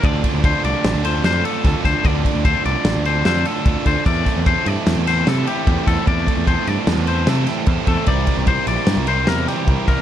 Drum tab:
CC |----------|----------|x---------|----------|
RD |xxxxxxxxxx|xxxxxxxxxx|-xxxxxxxxx|xxxxxxxxxx|
SD |----o-o-oo|----o-o---|-o--ooo---|----o-oo--|
BD |ooo-----oo|ooo-----oo|ooo-----oo|ooo-----oo|

CC |----------|
RD |xxxxxxxxxx|
SD |----o-oo--|
BD |ooo-----oo|